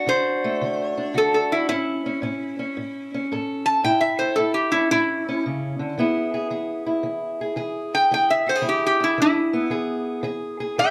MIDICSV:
0, 0, Header, 1, 3, 480
1, 0, Start_track
1, 0, Key_signature, 3, "major"
1, 0, Tempo, 534759
1, 1526, Time_signature, 4, 2, 24, 8
1, 9788, End_track
2, 0, Start_track
2, 0, Title_t, "Resonator guitar played with a steel bar"
2, 0, Program_c, 0, 25
2, 78, Note_on_c, 0, 72, 108
2, 1014, Note_off_c, 0, 72, 0
2, 1056, Note_on_c, 0, 69, 86
2, 1194, Note_off_c, 0, 69, 0
2, 1205, Note_on_c, 0, 69, 85
2, 1361, Note_off_c, 0, 69, 0
2, 1366, Note_on_c, 0, 64, 89
2, 1504, Note_off_c, 0, 64, 0
2, 1515, Note_on_c, 0, 64, 95
2, 2928, Note_off_c, 0, 64, 0
2, 3282, Note_on_c, 0, 81, 101
2, 3441, Note_off_c, 0, 81, 0
2, 3451, Note_on_c, 0, 79, 88
2, 3596, Note_on_c, 0, 76, 89
2, 3606, Note_off_c, 0, 79, 0
2, 3758, Note_off_c, 0, 76, 0
2, 3759, Note_on_c, 0, 72, 85
2, 3911, Note_on_c, 0, 69, 84
2, 3920, Note_off_c, 0, 72, 0
2, 4072, Note_off_c, 0, 69, 0
2, 4076, Note_on_c, 0, 67, 88
2, 4233, Note_on_c, 0, 64, 85
2, 4238, Note_off_c, 0, 67, 0
2, 4397, Note_off_c, 0, 64, 0
2, 4409, Note_on_c, 0, 64, 104
2, 4875, Note_off_c, 0, 64, 0
2, 7132, Note_on_c, 0, 79, 91
2, 7284, Note_off_c, 0, 79, 0
2, 7305, Note_on_c, 0, 79, 82
2, 7450, Note_off_c, 0, 79, 0
2, 7454, Note_on_c, 0, 76, 88
2, 7605, Note_off_c, 0, 76, 0
2, 7623, Note_on_c, 0, 72, 82
2, 7769, Note_off_c, 0, 72, 0
2, 7797, Note_on_c, 0, 67, 82
2, 7936, Note_off_c, 0, 67, 0
2, 7957, Note_on_c, 0, 67, 87
2, 8096, Note_off_c, 0, 67, 0
2, 8112, Note_on_c, 0, 64, 83
2, 8253, Note_off_c, 0, 64, 0
2, 8272, Note_on_c, 0, 64, 102
2, 8722, Note_off_c, 0, 64, 0
2, 9685, Note_on_c, 0, 76, 86
2, 9687, Note_on_c, 0, 79, 95
2, 9788, Note_off_c, 0, 76, 0
2, 9788, Note_off_c, 0, 79, 0
2, 9788, End_track
3, 0, Start_track
3, 0, Title_t, "Steel-string acoustic guitar"
3, 0, Program_c, 1, 25
3, 0, Note_on_c, 1, 57, 62
3, 0, Note_on_c, 1, 66, 63
3, 58, Note_on_c, 1, 50, 71
3, 67, Note_on_c, 1, 62, 57
3, 394, Note_off_c, 1, 57, 0
3, 398, Note_on_c, 1, 57, 65
3, 520, Note_off_c, 1, 50, 0
3, 551, Note_on_c, 1, 50, 73
3, 865, Note_off_c, 1, 62, 0
3, 876, Note_on_c, 1, 62, 57
3, 1007, Note_off_c, 1, 50, 0
3, 1018, Note_off_c, 1, 66, 0
3, 1024, Note_on_c, 1, 50, 72
3, 1028, Note_on_c, 1, 66, 63
3, 1484, Note_off_c, 1, 50, 0
3, 1501, Note_off_c, 1, 62, 0
3, 1513, Note_on_c, 1, 45, 73
3, 1517, Note_off_c, 1, 57, 0
3, 1518, Note_off_c, 1, 66, 0
3, 1521, Note_on_c, 1, 61, 67
3, 1845, Note_off_c, 1, 61, 0
3, 1849, Note_on_c, 1, 61, 60
3, 1970, Note_off_c, 1, 45, 0
3, 1991, Note_on_c, 1, 45, 75
3, 1998, Note_off_c, 1, 61, 0
3, 2001, Note_on_c, 1, 61, 61
3, 2323, Note_off_c, 1, 61, 0
3, 2326, Note_on_c, 1, 61, 60
3, 2449, Note_off_c, 1, 45, 0
3, 2485, Note_on_c, 1, 45, 69
3, 2810, Note_off_c, 1, 61, 0
3, 2822, Note_on_c, 1, 61, 61
3, 2937, Note_off_c, 1, 45, 0
3, 2977, Note_on_c, 1, 45, 76
3, 2984, Note_on_c, 1, 69, 65
3, 3424, Note_off_c, 1, 45, 0
3, 3436, Note_off_c, 1, 61, 0
3, 3437, Note_off_c, 1, 69, 0
3, 3444, Note_on_c, 1, 45, 78
3, 3456, Note_on_c, 1, 64, 68
3, 3780, Note_on_c, 1, 69, 63
3, 3896, Note_off_c, 1, 45, 0
3, 3918, Note_on_c, 1, 45, 73
3, 3928, Note_off_c, 1, 64, 0
3, 3932, Note_on_c, 1, 64, 62
3, 4251, Note_on_c, 1, 61, 60
3, 4373, Note_off_c, 1, 45, 0
3, 4410, Note_on_c, 1, 45, 73
3, 4733, Note_off_c, 1, 61, 0
3, 4744, Note_on_c, 1, 61, 60
3, 4859, Note_off_c, 1, 45, 0
3, 4899, Note_on_c, 1, 49, 61
3, 5196, Note_off_c, 1, 49, 0
3, 5200, Note_on_c, 1, 50, 62
3, 5354, Note_off_c, 1, 69, 0
3, 5356, Note_off_c, 1, 61, 0
3, 5363, Note_off_c, 1, 50, 0
3, 5365, Note_on_c, 1, 52, 72
3, 5373, Note_on_c, 1, 59, 63
3, 5374, Note_off_c, 1, 64, 0
3, 5377, Note_on_c, 1, 64, 63
3, 5388, Note_on_c, 1, 68, 69
3, 5686, Note_off_c, 1, 68, 0
3, 5690, Note_on_c, 1, 68, 64
3, 5816, Note_off_c, 1, 52, 0
3, 5839, Note_on_c, 1, 52, 69
3, 5840, Note_off_c, 1, 68, 0
3, 5843, Note_on_c, 1, 68, 62
3, 6158, Note_off_c, 1, 64, 0
3, 6161, Note_on_c, 1, 64, 59
3, 6292, Note_off_c, 1, 52, 0
3, 6311, Note_on_c, 1, 52, 74
3, 6648, Note_off_c, 1, 68, 0
3, 6651, Note_on_c, 1, 68, 64
3, 6768, Note_off_c, 1, 52, 0
3, 6787, Note_on_c, 1, 52, 72
3, 6789, Note_off_c, 1, 68, 0
3, 6793, Note_on_c, 1, 68, 68
3, 7245, Note_off_c, 1, 52, 0
3, 7282, Note_on_c, 1, 52, 81
3, 7283, Note_off_c, 1, 68, 0
3, 7287, Note_on_c, 1, 68, 71
3, 7594, Note_off_c, 1, 68, 0
3, 7598, Note_on_c, 1, 66, 64
3, 7624, Note_off_c, 1, 64, 0
3, 7678, Note_off_c, 1, 66, 0
3, 7678, Note_on_c, 1, 68, 54
3, 7724, Note_off_c, 1, 52, 0
3, 7735, Note_on_c, 1, 52, 75
3, 7741, Note_on_c, 1, 64, 61
3, 8076, Note_off_c, 1, 64, 0
3, 8080, Note_on_c, 1, 64, 63
3, 8197, Note_off_c, 1, 52, 0
3, 8237, Note_on_c, 1, 52, 77
3, 8514, Note_off_c, 1, 59, 0
3, 8557, Note_on_c, 1, 59, 60
3, 8687, Note_off_c, 1, 52, 0
3, 8705, Note_off_c, 1, 68, 0
3, 8706, Note_on_c, 1, 52, 74
3, 8715, Note_on_c, 1, 68, 68
3, 9161, Note_off_c, 1, 52, 0
3, 9176, Note_off_c, 1, 59, 0
3, 9178, Note_off_c, 1, 68, 0
3, 9181, Note_on_c, 1, 52, 78
3, 9191, Note_on_c, 1, 68, 72
3, 9506, Note_off_c, 1, 68, 0
3, 9516, Note_on_c, 1, 68, 66
3, 9637, Note_off_c, 1, 52, 0
3, 9674, Note_off_c, 1, 68, 0
3, 9678, Note_on_c, 1, 52, 79
3, 9688, Note_on_c, 1, 68, 70
3, 9788, Note_off_c, 1, 52, 0
3, 9788, Note_off_c, 1, 64, 0
3, 9788, Note_off_c, 1, 68, 0
3, 9788, End_track
0, 0, End_of_file